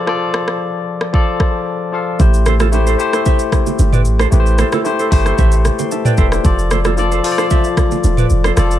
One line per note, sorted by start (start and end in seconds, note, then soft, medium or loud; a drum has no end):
0.00 0.06 F3 medium
0.00 0.07 F4 medium
0.00 2.22 G#4 medium
0.00 0.08 A4 medium
0.00 0.09 D5 loud
0.06 1.01 F3 medium
0.06 1.01 F4 medium
0.06 1.02 A4 medium
0.06 1.02 D5 loud
0.06 cross-stick medium
0.34 cross-stick loud
0.48 cross-stick medium
1.01 cross-stick medium
1.12 1.83 F3 medium
1.12 1.84 F4 medium
1.12 1.84 A4 medium
1.12 1.85 D5 medium
1.12 kick loud
1.40 kick medium
1.40 cross-stick medium
1.92 2.16 F3 medium
1.92 2.17 F4 medium
1.92 2.17 A4 medium
1.92 2.17 F5 medium
2.19 2.95 A1 loud
2.19 2.66 A3 medium
2.19 2.67 E4 medium
2.19 2.67 G4 medium
2.19 2.67 C5 medium
2.19 kick loud
2.19 low conga medium
2.19 shaker medium
2.34 shaker soft
2.46 2.54 A4 medium
2.46 2.53 C5 medium
2.46 cross-stick loud
2.46 low bongo medium
2.46 shaker medium
2.60 2.67 F4 medium
2.60 2.67 A4 medium
2.60 cross-stick loud
2.60 low bongo medium
2.60 shaker medium
2.72 2.96 A3 medium
2.72 2.96 E4 medium
2.72 2.97 G4 medium
2.72 2.97 C5 medium
2.72 high bongo medium
2.72 shaker medium
2.87 2.94 A4 medium
2.87 2.93 C5 medium
2.87 shaker medium
2.98 3.93 A3 medium
2.98 3.93 E4 medium
2.98 3.94 G4 medium
2.98 3.94 C5 medium
2.98 shaker medium
3.13 3.20 A4 medium
3.13 3.20 C5 medium
3.13 cross-stick medium
3.13 high bongo medium
3.13 shaker soft
3.25 3.40 C5 medium
3.25 3.40 E5 medium
3.25 kick medium
3.25 low conga medium
3.25 shaker medium
3.39 shaker medium
3.52 kick medium
3.52 cross-stick medium
3.52 low conga medium
3.52 shaker medium
3.66 low bongo medium
3.66 shaker medium
3.79 4.07 G1 medium
3.79 high bongo medium
3.79 shaker medium
3.92 4.00 B4 medium
3.92 4.00 D5 medium
3.92 mid tom medium
3.92 shaker medium
4.05 4.26 A1 medium
4.05 shaker medium
4.19 4.27 A4 medium
4.19 4.26 C5 medium
4.19 cross-stick loud
4.19 high bongo medium
4.19 shaker soft
4.31 4.63 A1 loud
4.31 4.79 A3 medium
4.31 4.79 E4 medium
4.31 4.79 G4 medium
4.31 4.39 B4 medium
4.31 low conga medium
4.31 shaker medium
4.40 4.83 C5 medium
4.46 shaker soft
4.58 4.67 A4 medium
4.58 4.66 C5 medium
4.58 cross-stick loud
4.58 low bongo medium
4.58 shaker medium
4.72 4.80 F4 medium
4.72 4.79 A4 medium
4.72 cross-stick loud
4.72 low bongo medium
4.72 shaker medium
4.84 5.08 A3 medium
4.84 5.09 E4 medium
4.84 5.09 G4 medium
4.84 5.09 C5 medium
4.84 high bongo medium
4.84 shaker medium
4.99 5.06 A4 medium
4.99 5.06 C5 medium
4.99 shaker medium
5.11 5.32 G1 medium
5.11 6.05 A3 medium
5.11 6.06 E4 medium
5.11 5.65 G4 medium
5.11 5.66 C5 loud
5.11 kick medium
5.11 open hi-hat medium
5.11 shaker medium
5.26 5.33 A4 medium
5.26 5.32 C5 medium
5.26 cross-stick medium
5.26 high bongo medium
5.26 shaker soft
5.38 5.70 A1 loud
5.38 5.53 C5 medium
5.38 5.52 E5 medium
5.38 kick loud
5.38 low conga medium
5.38 shaker medium
5.52 shaker medium
5.65 cross-stick medium
5.65 low conga medium
5.65 shaker medium
5.79 5.91 G5 medium
5.79 5.91 C6 medium
5.79 low bongo medium
5.79 shaker medium
5.91 6.05 E5 medium
5.91 6.05 A5 medium
5.91 high bongo medium
5.91 shaker medium
6.05 6.13 B4 medium
6.05 6.12 D5 medium
6.05 6.18 D5 medium
6.05 6.17 G5 medium
6.05 mid tom medium
6.05 shaker medium
6.17 6.39 E1 medium
6.17 6.26 A4 medium
6.17 6.32 B4 medium
6.17 6.25 C5 medium
6.17 6.31 E5 medium
6.17 kick loud
6.17 shaker medium
6.32 6.57 G4 medium
6.32 6.57 C5 medium
6.32 cross-stick loud
6.32 high bongo medium
6.32 shaker soft
6.43 7.20 F1 loud
6.43 6.91 F3 medium
6.43 6.91 F4 medium
6.43 6.92 A4 medium
6.43 6.92 D5 loud
6.43 kick loud
6.43 low conga medium
6.43 shaker medium
6.59 shaker medium
6.71 6.79 A4 medium
6.71 6.78 C5 medium
6.71 cross-stick loud
6.71 low bongo medium
6.71 shaker medium
6.84 6.92 F4 medium
6.84 6.92 A4 medium
6.84 cross-stick loud
6.84 low bongo medium
6.84 shaker soft
6.96 7.21 F3 medium
6.96 7.21 F4 medium
6.96 7.21 A4 medium
6.96 7.22 D5 medium
6.96 high bongo medium
6.96 shaker medium
7.12 7.19 A4 medium
7.12 7.18 C5 medium
7.12 shaker medium
7.23 8.18 F3 medium
7.23 8.18 F4 medium
7.23 8.19 A4 medium
7.23 7.32 C5 medium
7.23 open hi-hat medium
7.23 shaker medium
7.32 8.22 D5 loud
7.38 7.45 A4 medium
7.38 7.45 C5 medium
7.38 cross-stick medium
7.38 high bongo medium
7.38 shaker medium
7.50 7.65 C5 medium
7.50 7.64 E5 medium
7.50 kick loud
7.50 low conga medium
7.50 shaker medium
7.64 shaker medium
7.77 kick medium
7.77 cross-stick loud
7.77 low conga medium
7.77 shaker medium
7.91 low bongo medium
7.91 shaker medium
8.04 8.24 E1 loud
8.04 high bongo medium
8.04 shaker medium
8.17 8.25 B4 medium
8.17 8.24 D5 medium
8.17 mid tom medium
8.17 shaker medium
8.30 8.51 F1 loud
8.30 shaker medium
8.44 8.52 A4 medium
8.44 8.51 C5 medium
8.44 cross-stick loud
8.44 high bongo medium
8.44 shaker soft
8.56 8.79 F1 loud
8.56 8.79 F3 medium
8.56 8.79 F4 medium
8.56 8.79 A4 medium
8.56 8.79 D5 loud
8.56 cross-stick loud
8.56 low conga medium
8.56 shaker medium
8.71 shaker soft